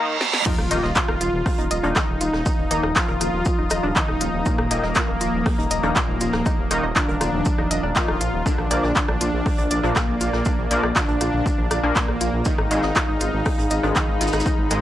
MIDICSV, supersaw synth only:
0, 0, Header, 1, 2, 480
1, 0, Start_track
1, 0, Tempo, 500000
1, 441, Time_signature, 4, 2, 24, 8
1, 14219, End_track
2, 0, Start_track
2, 0, Title_t, "Supersaw synth"
2, 0, Program_c, 0, 81
2, 440, Note_on_c, 0, 65, 109
2, 1785, Note_off_c, 0, 65, 0
2, 1880, Note_on_c, 0, 63, 99
2, 2745, Note_off_c, 0, 63, 0
2, 2841, Note_on_c, 0, 65, 101
2, 3705, Note_off_c, 0, 65, 0
2, 3800, Note_on_c, 0, 63, 92
2, 4242, Note_off_c, 0, 63, 0
2, 4281, Note_on_c, 0, 58, 111
2, 5625, Note_off_c, 0, 58, 0
2, 5720, Note_on_c, 0, 58, 98
2, 6585, Note_off_c, 0, 58, 0
2, 6681, Note_on_c, 0, 62, 101
2, 7545, Note_off_c, 0, 62, 0
2, 7641, Note_on_c, 0, 65, 91
2, 8082, Note_off_c, 0, 65, 0
2, 8121, Note_on_c, 0, 62, 107
2, 9465, Note_off_c, 0, 62, 0
2, 9561, Note_on_c, 0, 58, 99
2, 10425, Note_off_c, 0, 58, 0
2, 10520, Note_on_c, 0, 62, 104
2, 11384, Note_off_c, 0, 62, 0
2, 11480, Note_on_c, 0, 58, 94
2, 11922, Note_off_c, 0, 58, 0
2, 11961, Note_on_c, 0, 63, 105
2, 13305, Note_off_c, 0, 63, 0
2, 13401, Note_on_c, 0, 63, 101
2, 14219, Note_off_c, 0, 63, 0
2, 14219, End_track
0, 0, End_of_file